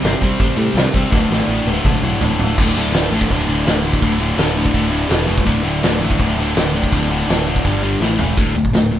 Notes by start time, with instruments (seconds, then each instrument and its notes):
0.03 picked electric bass G1, distorted electric guitar C3 G3 C4, snare, open hi-hat
0.21 picked electric bass C2, distorted electric guitar C3 G3 C4, kick
0.39 picked electric bass A1, distorted electric guitar C3 G3 C4, kick, open hi-hat
0.57 picked electric bass A2, distorted electric guitar C3 G3 C4
0.74 picked electric bass C2, distorted electric guitar C3 G3 C4, snare, open hi-hat
0.93 picked electric bass C2, distorted electric guitar C3 G3 C4, kick
1.10 picked electric bass D1, distorted electric guitar D2 A2 D3, kick, snare
1.29 picked electric bass A1, distorted electric guitar D2 A2 D3, snare
1.48 picked electric bass A1, distorted electric guitar D2 A2 D3
1.65 picked electric bass D1, distorted electric guitar D2 A2 D3, high tom
1.85 picked electric bass B1, distorted electric guitar D2 A2 D3, kick, mid tom
2.02 picked electric bass B1, distorted electric guitar D2 A2 D3
2.21 picked electric bass D1, distorted electric guitar D2 A2 D3, floor tom
2.39 picked electric bass D1, distorted electric guitar D2 A2 D3, floor tom
2.57 picked electric bass D1, distorted electric guitar D2 A2 D3, kick, crash
2.75 picked electric bass D1, distorted electric guitar D2 A2 D3
2.92 picked electric bass D1, distorted electric guitar D2 A2 D3, snare, crash
3.11 picked electric bass A1, distorted electric guitar D2 A2 D3
3.21 kick
3.30 picked electric bass D1, distorted electric guitar D2 A2 D3, kick, crash
3.47 picked electric bass D1, distorted electric guitar D2 A2 D3
3.66 picked electric bass D1, distorted electric guitar D2 A2 D3, snare, crash
3.84 distorted electric guitar D2 A2 D3
3.93 kick
4.02 picked electric bass D1, distorted electric guitar D2 A2 D3, kick, crash
4.20 distorted electric guitar D2 A2 D3
4.37 picked electric bass D1, distorted electric guitar D2 A2 D3, snare, crash
4.55 distorted electric guitar D2 A2 D3
4.66 kick
4.74 picked electric bass D1, distorted electric guitar D2 A2 D3, kick, crash
4.91 distorted electric guitar D2 A2 D3
5.09 picked electric bass E1, distorted electric guitar E2 B2 E3, snare, crash
5.26 picked electric bass E1, distorted electric guitar E2 B2 E3
5.38 kick
5.45 picked electric bass D1, distorted electric guitar D2 A2 D3, kick, crash
5.63 picked electric bass D1, distorted electric guitar D2 A2 D3
5.82 picked electric bass D1, distorted electric guitar D2 A2 D3, snare, crash
6.00 picked electric bass A1, distorted electric guitar D2 A2 D3
6.11 kick
6.19 picked electric bass D1, distorted electric guitar D2 A2 D3, kick, crash
6.37 picked electric bass D1, distorted electric guitar D2 A2 D3
6.56 picked electric bass D1, distorted electric guitar D2 A2 D3, snare, crash
6.75 distorted electric guitar D2 A2 D3
6.84 kick
6.92 picked electric bass D1, distorted electric guitar D2 A2 D3, kick, crash
7.10 distorted electric guitar D2 A2 D3
7.28 picked electric bass D1, distorted electric guitar D2 A2 D3, snare, crash
7.46 distorted electric guitar D2 A2 D3
7.56 kick
7.65 picked electric bass G1, distorted electric guitar G2 D3 G3, kick, crash
7.82 distorted electric guitar G2 D3 G3
8.01 picked electric bass A1, distorted electric guitar A2 E3 A3, snare
8.19 picked electric bass E1, distorted electric guitar A2 E3 A3, floor tom
8.37 picked electric bass D1, distorted electric guitar D2 A2 D3, kick, open hi-hat
8.55 picked electric bass D1, distorted electric guitar D2 A2, open hi-hat
8.65 kick
8.73 picked electric bass D1, distorted electric guitar D2 A2, snare, open hi-hat
8.91 distorted electric guitar D2 A2, open hi-hat